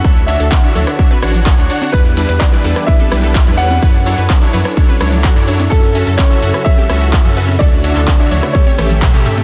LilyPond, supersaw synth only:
\new Staff \with { instrumentName = "Supersaw synth" } { \time 4/4 \key d \major \tempo 4 = 127 <d' fis' cis'' e''>8 <d' fis' cis'' e''>16 r8 <d' fis' cis'' e''>16 <d' fis' cis'' e''>8 <d' fis' cis'' e''>8 <d' fis' cis'' fis''>8. <d' fis' cis'' fis''>16 <d' fis' cis'' fis''>16 <d' fis' cis'' fis''>16 | <g d' e' b'>8 <g d' e' b'>16 r8 <g d' e' b'>16 <g d' e' b'>8 <g d' e' b'>8 <g d' e' b'>8 r16 <g d' e' b'>16 <g d' e' b'>8 | <fis d' e' cis''>8 <fis d' e' cis''>16 r8 <fis d' e' cis''>16 <fis d' e' cis''>8 <fis d' e' cis''>8 <fis d' e' cis''>8 r16 <fis d' e' cis''>16 <fis d' e' cis''>8 | <cis' fis' a' e''>8 <cis' fis' a' e''>16 r8 <cis' fis' a' e''>16 <cis' fis' a' e''>8 <cis' fis' e''>8 <cis' fis' a' e''>8 r16 <cis' fis' a' e''>16 <cis' fis' a' e''>8 |
<d' fis' cis'' e''>8 <d' fis' cis'' e''>16 r8 <d' fis' cis'' e''>16 <d' fis' cis'' e''>8 <cis' g' a' e''>8 <cis' g' a' e''>8 r16 <cis' g' a' e''>16 <cis' g' a' e''>8 | }